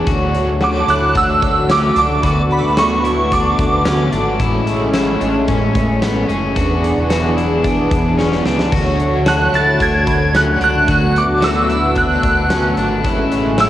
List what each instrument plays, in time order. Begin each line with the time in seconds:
0.06 analog synth bass D2, overdriven electric guitar D3 A3 C#4 F#4 A4 D5, analog synth pad D3 A3 F#4 C#5, kick, closed hi-hat
0.33 overdriven electric guitar F#4 A4 D5, closed hi-hat
0.37 overdriven electric guitar C#4
0.60 overdriven electric guitar D3 A3 C#4 F#4 A4 D5, celesta F#5, synth bell D6, snare, closed hi-hat, tambourine
0.80 celesta A5
0.87 analog synth bass D2, clean electric guitar E4, overdriven electric guitar F#4 A4 D5, synth bell F#6, closed hi-hat
0.91 overdriven electric guitar C#4
0.97 celesta B5
1.13 analog synth bass D2, overdriven electric guitar C#4 F#4 A4, clean electric guitar D4, kick, closed hi-hat
1.17 overdriven electric guitar D5, synth bell E6
1.40 overdriven electric guitar F#4 A4 D5, kick, closed hi-hat
1.45 overdriven electric guitar C#4
1.68 overdriven electric guitar D3 A3 C#4 F#4 A4 D5, synth bell D6, snare, closed hi-hat, tambourine
1.96 analog synth bass C#2, clean electric guitar D4, overdriven electric guitar F#4 A4 D5, synth bell D6, closed hi-hat
2.01 overdriven electric guitar C#4
2.22 analog synth bass D2, overdriven electric guitar D3 A3 C#4 F#4 A4 D5, analog synth pad B3, celesta B5, kick, closed hi-hat
2.39 celesta D5
2.49 overdriven electric guitar F#4 A4 D5, synth bell B5, closed hi-hat
2.54 overdriven electric guitar C#4
2.58 celesta E6
2.64 analog synth bass D2
2.77 overdriven electric guitar D3 A3 C#4 F#4 A4, synth bell C#6, snare, closed hi-hat, tambourine
2.81 overdriven electric guitar D5
3.03 clean electric guitar E4, overdriven electric guitar F#4 A4 D5, closed hi-hat
3.08 overdriven electric guitar C#4
3.31 overdriven electric guitar C#4 F#4 A4, clean electric guitar D4, synth bell D6, kick, closed hi-hat
3.36 overdriven electric guitar D5
3.58 analog synth bass D2, overdriven electric guitar F#4 A4 D5, kick, closed hi-hat
3.63 overdriven electric guitar C#4
3.85 overdriven electric guitar D3 A3 C#4 F#4 A4 D5, snare, closed hi-hat, tambourine
4.11 analog synth bass G#1, clean electric guitar D4, overdriven electric guitar F#4 A4 D5, closed hi-hat
4.16 overdriven electric guitar C#4
4.39 analog synth bass A1, analog synth pad G#3 A3 C#4, overdriven electric guitar A3 B3 E4 G#4 C#5, kick, closed hi-hat
4.66 overdriven electric guitar G#4 C#5, closed hi-hat
4.70 overdriven electric guitar E4
4.94 overdriven electric guitar A3 B3 E4 G#4 C#5, snare, closed hi-hat, tambourine
5.20 analog synth bass A1, clean electric guitar D4, overdriven electric guitar G#4 C#5, closed hi-hat
5.25 overdriven electric guitar E4
5.48 analog synth bass A1, overdriven electric guitar B3 E4 G#4, clean electric guitar C#4, kick, closed hi-hat
5.53 overdriven electric guitar C#5
5.74 overdriven electric guitar G#4 C#5, kick, closed hi-hat
5.79 overdriven electric guitar E4
6.01 overdriven electric guitar A3 B3 E4 G#4 C#5, snare, closed hi-hat, tambourine
6.29 analog synth bass F#1, clean electric guitar C#4, overdriven electric guitar G#4 C#5, closed hi-hat
6.33 overdriven electric guitar E4
6.55 analog synth bass E1, overdriven electric guitar E3 B3 D4 G#4 D5, analog synth pad E3 B3 D4 G#4, clean electric guitar F#4, kick, closed hi-hat
6.82 overdriven electric guitar G#4 D5, closed hi-hat
6.86 overdriven electric guitar D4
6.97 analog synth bass E1
7.09 overdriven electric guitar E3 B3 D4 G#4 D5, clean electric guitar F#4, snare, closed hi-hat, tambourine
7.35 clean electric guitar E4, overdriven electric guitar G#4 D5, closed hi-hat
7.40 overdriven electric guitar D4
7.62 overdriven electric guitar B3 D4 G#4, kick, closed hi-hat
7.67 overdriven electric guitar D5
7.90 analog synth bass E1, overdriven electric guitar G#4 D5, kick, closed hi-hat
7.94 overdriven electric guitar D4
8.17 overdriven electric guitar E3 B3 D4 G#4 D5, clean electric guitar C#4, snare
8.32 snare
8.44 analog synth bass C#2, overdriven electric guitar G#4 D5, snare
8.49 overdriven electric guitar D4
8.59 snare
8.71 analog synth bass D2, overdriven electric guitar D3 F#3 A3 D4 F#4 C#5, analog synth pad D3 A3 F#4 C#5, kick, splash
8.97 overdriven electric guitar D4 F#4 C#5, closed hi-hat
9.02 overdriven electric guitar A3
9.25 overdriven electric guitar D3 F#3 A3 D4 F#4 C#5, celesta A5, synth bell F#6, snare, closed hi-hat, tambourine
9.51 analog synth bass D2, overdriven electric guitar D4 F#4 C#5, clean electric guitar E4, closed hi-hat
9.55 overdriven electric guitar A3, synth bell A6
9.78 analog synth bass D2, overdriven electric guitar A3 D4 F#4, kick, closed hi-hat
9.82 overdriven electric guitar C#5, synth bell G#6
10.05 overdriven electric guitar D4 F#4 C#5, celesta B5, kick, closed hi-hat
10.10 overdriven electric guitar A3
10.32 overdriven electric guitar D3 F#3 A3 D4 F#4 C#5, clean electric guitar C#4, synth bell F#6, snare, closed hi-hat, tambourine
10.60 analog synth bass C#2, overdriven electric guitar D4 F#4 C#5, closed hi-hat
10.64 overdriven electric guitar A3, synth bell F#6
10.87 analog synth bass D2, overdriven electric guitar D3 F#3 A3 D4 F#4 C#5, analog synth pad B3, kick, closed hi-hat
11.14 overdriven electric guitar D4 F#4 C#5, synth bell D6, closed hi-hat
11.18 overdriven electric guitar A3
11.28 analog synth bass D2
11.40 overdriven electric guitar D3 F#3 A3 D4 F#4 C#5, snare, closed hi-hat, tambourine
11.44 synth bell E6
11.67 overdriven electric guitar D4 F#4 C#5, clean electric guitar E4, closed hi-hat
11.72 overdriven electric guitar A3
11.94 overdriven electric guitar A3 D4 F#4, synth bell F#6, kick, closed hi-hat
11.99 overdriven electric guitar C#5
12.22 analog synth bass D2, overdriven electric guitar D4 F#4 C#5, kick, closed hi-hat
12.27 overdriven electric guitar A3
12.49 overdriven electric guitar D3 F#3 A3 D4 F#4 C#5, clean electric guitar C#4, celesta A5, snare, closed hi-hat, tambourine
12.75 analog synth bass G#1, overdriven electric guitar D4 F#4 C#5, closed hi-hat
12.80 overdriven electric guitar A3
13.03 analog synth bass A1, analog synth pad G#3 A3 C#4, overdriven electric guitar A3 B3 E4 G#4 C#5, kick, closed hi-hat
13.31 overdriven electric guitar G#4 C#5, closed hi-hat
13.36 overdriven electric guitar E4
13.58 overdriven electric guitar A3 B3 E4 G#4 C#5, synth bell E6, snare, closed hi-hat, tambourine